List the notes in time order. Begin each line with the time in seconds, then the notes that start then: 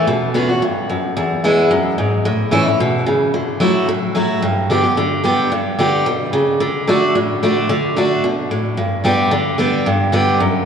0.07 B2
0.34 D3 B3 C#4 F#4
0.49 C#4 F#4
0.62 G2
0.90 F#2
1.17 E2
1.44 E3 G#3 B3 E4
1.71 F#2
1.98 G#2
2.25 A2
2.51 E3 A3 C#4 E4
2.66 C#4 E4
2.80 B2
3.06 C#3
3.34 D3
3.60 F#3 A3 E4 F#4
3.89 A2
4.15 F#3 A3 E4 F#4
4.42 G2
4.70 D3 G3 B3 G4
4.83 B3 G4
4.97 D3
5.24 D3 G3 B3 G4
5.52 G2
5.79 D3 G3 B3 G4
6.06 B2
6.33 C#3
6.60 D3
6.87 D3 A3 D4 F#4
7.15 A2
7.43 D3 A3 D4 F#4
7.69 D3
7.96 D3 A3 D4 F#4
8.24 B2
8.51 A2
8.77 G2
9.04 D3 G3 B3 G4
9.31 D3
9.58 D3 G3 B3 G4
9.86 G2
10.12 D3 G3 B3 G4
10.40 F#2